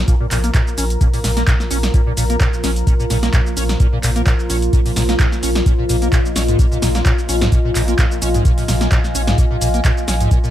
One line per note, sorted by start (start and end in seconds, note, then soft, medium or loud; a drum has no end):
0.00 10.50 A#2 medium
0.00 10.50 F3 medium
0.00 10.50 A#3 medium
0.00 10.50 F4 medium
0.00 5.65 A#4 medium
0.00 10.50 F5 medium
0.00 7.12 A#5 medium
0.08 0.15 A#2 medium
0.08 kick loud
0.08 closed hi-hat medium
0.08 shaker soft
0.20 0.26 A#2 medium
0.31 0.50 A#1 loud
0.31 0.38 A#2 medium
0.31 clap medium
0.31 open hi-hat loud
0.31 shaker medium
0.44 0.50 A#3 medium
0.44 closed hi-hat medium
0.44 shaker soft
0.54 0.61 A#2 loud
0.54 kick loud
0.54 clap loud
0.54 closed hi-hat medium
0.54 shaker soft
0.67 shaker soft
0.78 0.97 A#1 loud
0.78 0.85 C#4 medium
0.78 open hi-hat loud
0.78 shaker medium
0.90 closed hi-hat medium
0.90 shaker soft
1.01 1.08 A#2 medium
1.01 kick loud
1.01 closed hi-hat medium
1.01 shaker soft
1.14 1.19 A#2 medium
1.14 open hi-hat medium
1.14 shaker soft
1.24 1.43 A#1 medium
1.24 1.31 A#2 medium
1.24 snare medium
1.24 open hi-hat loud
1.24 shaker medium
1.37 1.43 A#3 medium
1.37 snare medium
1.37 closed hi-hat medium
1.37 shaker soft
1.47 1.54 A#2 loud
1.47 kick loud
1.47 clap loud
1.47 closed hi-hat medium
1.47 shaker soft
1.60 snare soft
1.60 shaker soft
1.71 1.90 A#1 medium
1.71 1.78 C#4 medium
1.71 open hi-hat loud
1.71 shaker medium
1.83 snare medium
1.83 closed hi-hat medium
1.83 shaker soft
1.94 2.01 A#2 medium
1.94 kick loud
1.94 closed hi-hat medium
1.94 shaker soft
2.07 2.12 A#2 medium
2.17 2.36 A#1 loud
2.17 2.24 A#2 medium
2.17 open hi-hat loud
2.17 shaker medium
2.30 2.36 A#3 medium
2.30 closed hi-hat medium
2.30 shaker soft
2.40 2.47 A#2 loud
2.40 kick loud
2.40 clap loud
2.40 closed hi-hat medium
2.40 shaker soft
2.53 shaker soft
2.64 2.83 A#1 loud
2.64 2.71 C#4 medium
2.64 snare medium
2.64 open hi-hat loud
2.64 shaker medium
2.76 closed hi-hat medium
2.76 shaker soft
2.87 2.94 A#2 medium
2.87 kick loud
2.87 closed hi-hat medium
2.87 shaker soft
3.00 3.05 A#2 medium
3.00 shaker soft
3.10 3.29 A#1 medium
3.10 3.17 A#2 medium
3.10 snare medium
3.10 open hi-hat loud
3.10 shaker medium
3.23 3.29 A#3 medium
3.23 snare medium
3.23 closed hi-hat medium
3.23 shaker soft
3.33 3.40 A#2 loud
3.33 kick loud
3.33 clap loud
3.33 closed hi-hat medium
3.33 shaker soft
3.46 shaker soft
3.57 3.76 A#1 medium
3.57 3.64 C#4 medium
3.57 open hi-hat loud
3.57 shaker medium
3.69 snare medium
3.69 closed hi-hat medium
3.69 shaker soft
3.80 3.87 A#2 medium
3.80 kick loud
3.80 closed hi-hat medium
3.80 shaker soft
3.93 3.98 A#2 medium
4.03 4.22 A#1 loud
4.03 4.10 A#2 medium
4.03 clap medium
4.03 open hi-hat loud
4.03 shaker medium
4.16 4.22 A#3 medium
4.16 closed hi-hat medium
4.16 shaker soft
4.26 4.33 A#2 loud
4.26 kick loud
4.26 clap loud
4.26 closed hi-hat soft
4.26 shaker soft
4.39 shaker soft
4.50 4.69 A#1 loud
4.50 4.57 C#4 medium
4.50 open hi-hat loud
4.50 shaker medium
4.62 closed hi-hat medium
4.62 shaker soft
4.73 4.80 A#2 medium
4.73 kick loud
4.73 closed hi-hat medium
4.73 shaker soft
4.86 4.91 A#2 medium
4.86 open hi-hat medium
4.86 shaker soft
4.96 5.15 A#1 medium
4.96 5.03 A#2 medium
4.96 snare medium
4.96 open hi-hat loud
4.96 shaker medium
5.09 5.15 A#3 medium
5.09 snare medium
5.09 closed hi-hat medium
5.09 shaker soft
5.19 5.26 A#2 loud
5.19 kick loud
5.19 clap loud
5.19 closed hi-hat medium
5.19 shaker soft
5.32 snare soft
5.32 shaker soft
5.43 5.62 A#1 medium
5.43 5.50 C#4 medium
5.43 open hi-hat loud
5.43 shaker medium
5.55 snare medium
5.55 closed hi-hat medium
5.55 shaker soft
5.66 5.73 A#2 medium
5.66 10.50 D#5 medium
5.66 kick loud
5.66 closed hi-hat medium
5.66 shaker soft
5.79 5.84 A#2 medium
5.89 6.08 A#1 loud
5.89 5.96 A#2 medium
5.89 open hi-hat loud
5.89 shaker medium
6.02 6.08 A#3 medium
6.02 closed hi-hat medium
6.02 shaker soft
6.12 6.19 A#2 loud
6.12 kick loud
6.12 clap loud
6.12 closed hi-hat medium
6.12 shaker soft
6.26 shaker soft
6.36 6.55 A#1 loud
6.36 6.43 C#4 medium
6.36 snare medium
6.36 open hi-hat loud
6.36 shaker medium
6.48 6.57 G#2 medium
6.48 closed hi-hat medium
6.48 shaker soft
6.59 6.66 A#2 medium
6.59 kick loud
6.59 closed hi-hat medium
6.59 shaker soft
6.72 6.78 A#2 medium
6.72 shaker soft
6.82 7.01 A#1 medium
6.82 6.89 A#2 medium
6.82 snare medium
6.82 open hi-hat loud
6.82 shaker medium
6.95 7.01 A#3 medium
6.95 10.50 G#5 medium
6.95 snare medium
6.95 closed hi-hat medium
6.95 shaker soft
7.06 7.12 A#2 loud
7.06 kick loud
7.06 clap loud
7.06 closed hi-hat medium
7.06 shaker soft
7.19 shaker soft
7.29 7.48 A#1 medium
7.29 7.36 C#4 medium
7.29 open hi-hat loud
7.29 shaker medium
7.41 7.50 G#2 medium
7.41 snare medium
7.41 closed hi-hat medium
7.41 shaker soft
7.52 7.59 A#2 medium
7.52 kick loud
7.52 closed hi-hat medium
7.52 shaker soft
7.65 7.71 A#2 medium
7.75 7.94 A#1 loud
7.75 7.82 A#2 medium
7.75 clap medium
7.75 open hi-hat loud
7.75 shaker medium
7.88 7.94 A#3 medium
7.88 closed hi-hat medium
7.88 shaker soft
7.99 8.05 A#2 loud
7.99 kick loud
7.99 clap loud
7.99 closed hi-hat medium
7.99 shaker soft
8.12 shaker soft
8.22 8.41 A#1 loud
8.22 8.29 C#4 medium
8.22 open hi-hat loud
8.22 shaker medium
8.34 8.43 G#2 medium
8.34 closed hi-hat medium
8.34 shaker soft
8.45 8.52 A#2 medium
8.45 kick loud
8.45 closed hi-hat medium
8.45 shaker soft
8.58 8.64 A#2 medium
8.58 open hi-hat medium
8.58 shaker soft
8.68 8.87 A#1 medium
8.68 8.75 A#2 medium
8.68 snare medium
8.68 open hi-hat loud
8.68 shaker medium
8.81 8.87 A#3 medium
8.81 snare medium
8.81 closed hi-hat medium
8.81 shaker soft
8.92 8.99 A#2 loud
8.92 kick loud
8.92 clap loud
8.92 closed hi-hat medium
8.92 shaker soft
9.04 snare soft
9.04 shaker soft
9.15 9.34 A#1 loud
9.15 9.22 C#4 medium
9.15 open hi-hat loud
9.15 shaker medium
9.27 9.36 G#2 medium
9.27 snare medium
9.27 closed hi-hat medium
9.27 shaker soft
9.38 9.45 A#2 medium
9.38 kick loud
9.38 closed hi-hat medium
9.38 shaker soft
9.51 9.57 A#2 medium
9.61 9.80 A#1 loud
9.61 9.68 A#2 medium
9.61 open hi-hat loud
9.61 shaker medium
9.74 9.80 A#3 medium
9.74 closed hi-hat medium
9.74 shaker soft
9.85 9.92 A#2 loud
9.85 kick loud
9.85 clap loud
9.85 closed hi-hat medium
9.85 shaker soft
9.98 shaker soft
10.08 10.27 A#1 loud
10.08 10.15 C#4 medium
10.08 snare medium
10.08 open hi-hat loud
10.08 shaker medium
10.20 10.29 G#2 medium
10.20 closed hi-hat medium
10.20 shaker soft
10.31 10.38 A#2 medium
10.31 kick loud
10.31 closed hi-hat medium
10.31 shaker soft
10.44 10.50 A#2 medium
10.44 shaker soft